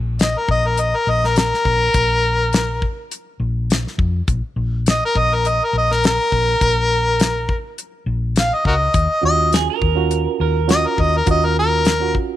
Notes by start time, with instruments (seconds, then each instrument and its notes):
Already playing: fingered electric bass A#1
0.19 harmonica D#5, snare, closed hi-hat
0.38 harmonica A#4
0.48 fingered electric bass A#1, harmonica D#5, kick
0.67 harmonica A#4
0.77 harmonica D#5, closed hi-hat
0.96 harmonica A#4
1.07 fingered electric bass A#1, harmonica D#5
1.24 harmonica A#4, snare
1.36 harmonica A#4, snare, closed hi-hat
1.54 snare
1.65 fingered electric bass A#1, kick
1.94 fingered electric bass A#1, kick, closed hi-hat
2.53 snare, closed hi-hat
2.82 kick
3.11 closed hi-hat
3.40 fingered electric bass A#1
3.70 snare, closed hi-hat
3.87 snare
3.98 fingered electric bass F2, kick
4.28 fingered electric bass A#1, kick, closed hi-hat
4.56 fingered electric bass A#1
4.86 snare, closed hi-hat
4.90 harmonica D#5
5.06 harmonica A#4
5.15 fingered electric bass A#1, harmonica D#5, kick
5.35 harmonica A#4
5.45 harmonica D#5, closed hi-hat
5.65 harmonica A#4
5.73 fingered electric bass A#1
5.78 harmonica D#5
5.92 harmonica A#4, snare
6.04 harmonica A#4, snare, closed hi-hat
6.32 fingered electric bass A#1, kick
6.61 fingered electric bass A#1, kick, closed hi-hat
7.20 snare, closed hi-hat
7.49 kick
7.78 closed hi-hat
8.06 fingered electric bass A#1
8.36 harmonica F5, snare, closed hi-hat
8.54 harmonica D#5
8.65 fingered electric bass C#2, harmonica F#4 A#4 D#5, kick
8.94 fingered electric bass D#2, kick, closed hi-hat
9.21 fingered electric bass D#2, reed electric piano C#4 F4 F#4
9.25 harmonica D#5
9.52 clean electric guitar G#4, snare, closed hi-hat
9.70 clean electric guitar A#4
9.81 fingered electric bass D#2, kick
9.95 reed electric piano C#4 F4 F#4
10.11 closed hi-hat
10.40 fingered electric bass D#2, clean electric guitar A#4
10.68 reed electric piano C#4 F4 F#4, harmonica D#5, snare, closed hi-hat
10.87 harmonica A#4
10.98 fingered electric bass D#2, harmonica D#5, kick
11.17 harmonica A#4
11.26 fingered electric bass D#2, reed electric piano C#4 F4 F#4, kick, closed hi-hat
11.31 harmonica D#5
11.45 harmonica A#4
11.59 harmonica A#4
11.85 snare, closed hi-hat
12.00 reed electric piano C#4 F4 F#4
12.15 kick